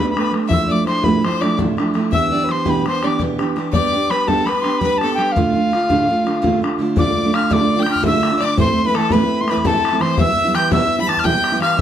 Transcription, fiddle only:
0.19 B4
0.48 E5
0.68 D5
0.86 C5
1.03 B4
1.23 C5
1.41 D5
2.11 E5
2.31 D5
2.44 B4
2.49 C5
2.67 B4
2.87 C5
3.04 D5
3.72 D5
4.12 B4
4.29 A4
4.48 B4
4.83 B4
5.03 A4
5.21 G4
5.38 F4
6.98 D5
7.34 F5
7.52 D5
7.79 G5
8.04 E5
8.39 D5
8.58 C5
8.86 B4
8.95 A4
9.12 B4
9.51 B4
9.65 A4
10.01 C5
10.20 E5
10.55 G5
10.72 E5
11.00 B5
11.07 A5
11.24 G5
11.61 F5
11.78 E5

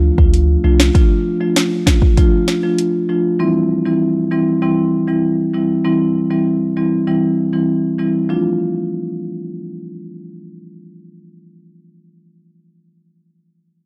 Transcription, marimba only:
0.18 F3 A3 D4 F4
0.64 F3 A3 D4 F4
0.94 F3 A3 D4 F4
1.40 F3 A3 D4 F4
1.86 F3 A3 D4 F4
2.17 F3 A3 D4 F4
2.63 F3 A3 D4 F4
3.09 F3 A3 D4 F4
3.39 E3 G3 C4 E4
3.86 E3 G3 C4 E4
4.31 E3 G3 C4 E4
4.62 E3 G3 C4 E4
5.08 E3 G3 C4 E4
5.54 E3 G3 C4 E4
5.84 E3 G3 C4 E4
6.30 E3 G3 C4 E4
6.77 E3 G3 C4 E4
7.07 E3 G3 C4 E4
7.53 E3 G3 C4 E4
7.99 E3 G3 C4 E4
8.29 F3 A3 D4 F4

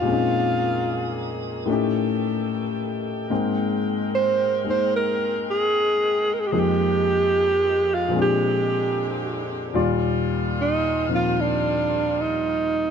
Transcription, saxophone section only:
Already playing: D#3
0.06 A#3 G#4
1.66 A4 G5
3.28 G#3 C4 A#4
6.52 F3 A#3 D#4
8.14 D3 C4 G4
9.74 D#3 G3 F4

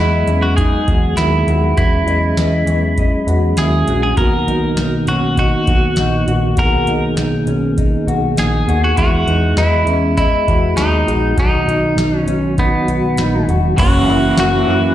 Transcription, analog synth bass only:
Already playing: E2
0.27 E2
0.88 E2
1.17 D#2
1.47 D#2
1.77 E2
2.06 E2
2.37 E2
2.66 E2
3.27 E2
3.57 D#2
3.87 A#1
4.17 B1
4.47 B1
4.78 B1
5.07 B1
5.67 B1
5.98 A#1
6.28 A#1
6.57 B1
6.88 B1
7.17 B1
7.47 B1
8.07 B1
8.37 A#1
8.67 D#2
8.98 E2
9.27 E2
9.57 E2
9.86 E2
10.48 E2
10.77 D#2
11.08 A#1
11.38 B1
11.68 B1
11.97 B1
12.27 B1
12.88 B1
13.19 A#1
13.48 E1
13.78 F#1
14.07 F#1
14.37 F#1
14.67 F#2

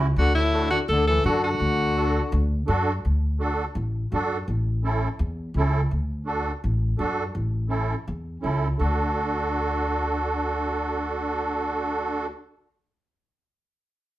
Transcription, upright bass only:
Already playing: C#2
0.16 D2
0.88 D2
1.24 F#2
1.60 D2
2.32 D2
2.68 F#2
3.05 D2
3.75 A1
4.12 F#2
4.48 A1
5.19 E2
5.54 C#2
5.91 D2
6.64 A1
6.99 F#2
7.35 A1
8.08 E2
8.44 C#2
8.79 D2

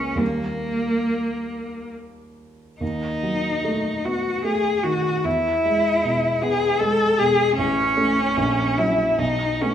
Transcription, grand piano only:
Already playing: C#2 A#3
0.15 D#2 G3 A#3
2.81 D#2
3.23 F#3
3.64 A3
4.05 B3
4.45 A3
4.84 D#3
5.24 E2
5.65 G#3
6.05 B2
6.43 B3
6.81 G#3
7.20 B2
7.58 A1
7.97 A3 C#4
8.37 A#1
8.78 F#3 C#4
9.18 B1
9.61 A3 B3

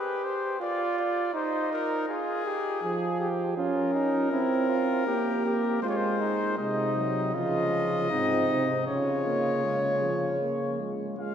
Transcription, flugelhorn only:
Already playing: G4
0.60 F4
1.34 D#4
2.09 F4
2.46 G4
2.83 G#4
3.20 G4
3.57 F4
3.94 D#4
4.31 E4
4.69 F4
5.07 G4
5.45 G4
5.83 F4
6.20 D#4
6.58 D#4
7.34 F4
8.10 D#4
8.87 F4
11.19 F4

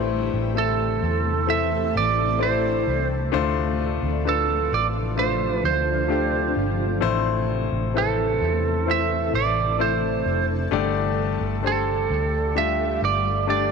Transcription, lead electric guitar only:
0.58 A4
1.50 E5
1.97 D5
2.43 C5
4.29 A4
4.74 D5
5.19 C5
5.65 C5
7.98 A4
8.91 E5
9.35 D5
9.81 C5
11.67 A4
12.58 E5
13.05 D5
13.50 D5

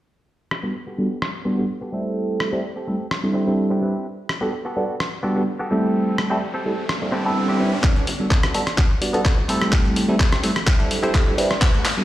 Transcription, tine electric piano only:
0.63 G3 B3 D4 F#4 A4
0.98 G3 B3 D4 F#4 A4
1.45 G3 B3 D4 F#4 D5
1.58 G3 B3 D4 F#4 A4
1.92 G3 A3 C4 E4 A4
2.52 G3 A3 C4 E4 A4
2.87 G3 A3 C4 E4 A4
3.23 G3 C4 D4 E4 A4
3.47 G3 C4 D4 E4 A4
3.81 G3 C4 D4 E4 B4
4.41 G3 B3 D4 F#4 A4
4.76 G3 B3 D4 F#4 A4
5.23 G3 B3 D4 F#4 D5
5.36 G3 B3 D4 F#4 A4
5.71 G3 A3 C4 E4 A4
6.30 G3 A3 C4 E4 A4
6.65 G3 A3 C4 E4 A4
7.02 G3 C4 D4 E4 A4
7.25 G3 C4 D4 E4 A4
7.60 G3 C4 D4 E4 B4
8.19 G3 B3 D4 F#4 A4
8.54 G3 B3 D4 F#4 A4
9.01 G3 B3 D4 F#4 D5
9.13 G3 B3 D4 F#4 A4
9.48 G3 A3 C4 E4 A4
10.08 G3 A3 C4 E4 A4
10.43 G3 A3 C4 E4 A4
10.79 G3 C4 D4 E4 A4
11.03 G3 C4 D4 E4 A4
11.37 G3 C4 D4 E4 B4
11.97 G3 B3 D4 F#4 A4

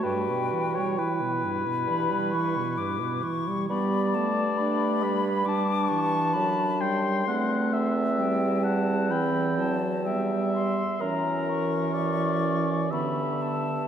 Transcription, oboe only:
0.03 B4
0.74 C#5
0.98 B4
3.71 D5
5.03 B5
5.48 A5
6.81 G5
7.28 F#5
7.73 E5
8.64 F#5
9.11 G5
10.05 E5
11.01 A#4
11.93 D5
12.91 E5

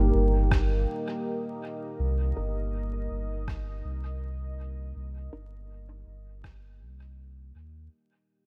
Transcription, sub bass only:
Already playing: G1
0.14 G1
1.99 C2
2.37 G1
3.11 G1
3.85 C2
4.96 C2
5.33 G1
6.07 G1
6.44 G1
6.81 C2
7.55 D#2

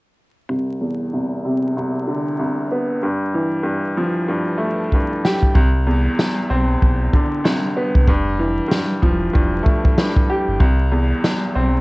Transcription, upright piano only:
0.49 C2
0.81 E2
1.13 C2
1.45 C3
1.77 C2
2.07 D3
2.39 C2
2.72 B3
3.03 G2
3.34 E3
3.63 G2
3.97 F3
4.28 G2
4.58 A3
4.93 G2
5.25 G4
5.55 C2
5.87 E2
6.50 C4
7.13 D3
7.44 C2
7.77 B3
8.08 G2
8.39 E3
8.68 G2
9.02 F3
9.33 G2
9.63 A3
9.98 G2
10.30 G4
10.60 C2
10.92 E2
11.55 C4

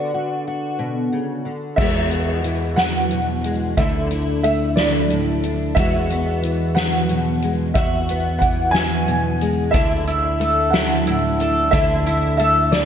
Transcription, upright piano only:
Already playing: D5
1.76 E5
2.76 F#5
3.77 E5
4.43 E5
4.76 D5
5.75 E5
6.75 F#5
7.74 E5
8.39 F#5
8.71 G#5
9.71 E5
10.70 F#5
11.71 E5
12.37 E5
12.71 D5

